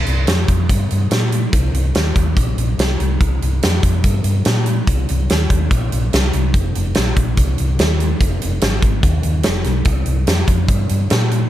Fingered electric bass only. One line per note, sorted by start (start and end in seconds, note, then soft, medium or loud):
0.07 0.24 C2 medium
0.28 0.45 F2 medium
0.49 0.66 F2 medium
0.69 0.86 G2 medium
0.92 1.08 G2 medium
1.11 1.45 A#2 medium
1.53 1.70 C2 medium
1.74 1.91 C2 medium
1.95 2.12 D#2 medium
2.16 2.33 D#2 medium
2.37 2.54 A#1 medium
2.57 2.74 A#1 medium
2.78 2.95 C2 medium
3.00 3.17 C2 medium
3.21 3.38 C2 medium
3.43 3.59 C2 medium
3.64 3.80 F2 medium
3.84 4.00 F2 medium
4.05 4.21 G2 medium
4.24 4.41 G2 medium
4.46 4.80 A#2 medium
4.88 5.04 C2 medium
5.10 5.26 C2 medium
5.31 5.47 D#2 medium
5.50 5.67 D#2 medium
5.71 5.88 A#1 medium
5.93 6.09 A#1 medium
6.14 6.30 C2 medium
6.34 6.51 C2 medium
6.54 6.71 F1 medium
6.76 6.92 F1 medium
6.97 7.13 A#1 medium
7.17 7.33 A#1 medium
7.38 7.55 C2 medium
7.60 7.76 C2 medium
7.79 8.12 D#2 medium
8.21 8.38 F1 medium
8.43 8.59 F1 medium
8.62 8.79 G#1 medium
8.83 9.00 G#1 medium
9.03 9.20 D#2 medium
9.24 9.41 D#2 medium
9.46 9.62 F1 medium
9.65 9.82 B1 medium
9.86 10.03 C2 medium
10.07 10.24 C2 medium
10.27 10.44 F2 medium
10.47 10.65 F2 medium
10.69 10.86 G2 medium
10.90 11.07 G2 medium
11.11 11.45 A#2 medium